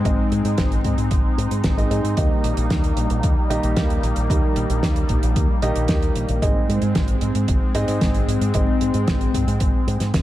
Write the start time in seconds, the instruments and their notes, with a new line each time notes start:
Already playing: analog synth pad G#3 C4 D#4
0.05 fingered electric bass G#1, grand piano G#2 C4 D#4 G#4 D#5, kick, closed hi-hat
0.32 fingered electric bass G#2, closed hi-hat
0.45 fingered electric bass G#2, closed hi-hat
0.58 fingered electric bass G#1, kick, snare, closed hi-hat
0.72 closed hi-hat
0.84 fingered electric bass G#2, kick, closed hi-hat
0.98 fingered electric bass G#2, closed hi-hat
1.11 fingered electric bass G#1, kick, closed hi-hat
1.38 fingered electric bass G#2, closed hi-hat
1.51 fingered electric bass G#2, closed hi-hat
1.64 fingered electric bass G#1, kick, snare, closed hi-hat
1.78 grand piano G#2 C4 D#4 G#4 D#5, closed hi-hat
1.91 fingered electric bass G#2, grand piano C4 D#4 G#4 D#5, closed hi-hat
2.04 fingered electric bass G#2, closed hi-hat
2.17 fingered electric bass D#2, grand piano D#3 A#3 D#4 G4 D#5, analog synth pad G3 A#3, kick, closed hi-hat
2.44 fingered electric bass A#1, closed hi-hat
2.57 fingered electric bass A#1, closed hi-hat
2.70 fingered electric bass D#2, kick, snare, closed hi-hat
2.84 closed hi-hat
2.97 fingered electric bass A#1, closed hi-hat
3.10 fingered electric bass A#1, closed hi-hat
3.23 fingered electric bass D#2, kick, closed hi-hat
3.50 fingered electric bass A#1, grand piano D#3 A#3 D#4 G4 D#5, closed hi-hat
3.63 fingered electric bass A#1, closed hi-hat
3.77 fingered electric bass D#2, kick, snare, closed hi-hat
3.90 closed hi-hat
4.03 fingered electric bass A#1, closed hi-hat
4.16 fingered electric bass A#1, closed hi-hat
4.30 fingered electric bass D#2, grand piano D#3 A#3 D#4 G4 D#5, kick, closed hi-hat
4.56 fingered electric bass A#1, closed hi-hat
4.70 fingered electric bass A#1, closed hi-hat
4.83 fingered electric bass D#2, kick, snare, closed hi-hat
4.96 closed hi-hat
5.09 fingered electric bass A#1, kick, closed hi-hat
5.23 fingered electric bass A#1, closed hi-hat
5.36 fingered electric bass D#2, kick, closed hi-hat
5.62 fingered electric bass A#1, grand piano D#3 A#3 D#4 G4 D#5, closed hi-hat
5.76 fingered electric bass A#1, closed hi-hat
5.88 fingered electric bass D#2, kick, snare, closed hi-hat
6.02 closed hi-hat
6.16 fingered electric bass A#1, closed hi-hat
6.29 fingered electric bass A#1, closed hi-hat
6.42 fingered electric bass G#1, grand piano G#2 C4 D#4 G#4 D#5, analog synth pad G#3 C4, kick, closed hi-hat
6.69 fingered electric bass G#2, closed hi-hat
6.82 fingered electric bass G#2, closed hi-hat
6.95 fingered electric bass G#1, kick, snare, closed hi-hat
7.08 closed hi-hat
7.21 fingered electric bass G#2, closed hi-hat
7.35 fingered electric bass G#2, closed hi-hat
7.48 fingered electric bass G#1, kick, closed hi-hat
7.75 grand piano G#2 C4 D#4 G#4 D#5, fingered electric bass G#2, closed hi-hat
7.88 fingered electric bass G#2, closed hi-hat
8.01 fingered electric bass G#1, kick, snare, closed hi-hat
8.15 closed hi-hat
8.28 fingered electric bass G#2, closed hi-hat
8.41 fingered electric bass G#2, closed hi-hat
8.54 fingered electric bass G#1, grand piano G#2 C4 D#4 G#4 D#5, kick, closed hi-hat
8.81 fingered electric bass G#2, closed hi-hat
8.94 fingered electric bass G#2, closed hi-hat
9.08 fingered electric bass G#1, kick, snare, closed hi-hat
9.21 closed hi-hat
9.34 fingered electric bass G#2, kick, closed hi-hat
9.48 fingered electric bass G#2, closed hi-hat
9.60 fingered electric bass G#1, kick, closed hi-hat
9.87 fingered electric bass G#2, closed hi-hat
10.00 fingered electric bass G#2, snare, closed hi-hat
10.14 fingered electric bass G#1, kick, snare, closed hi-hat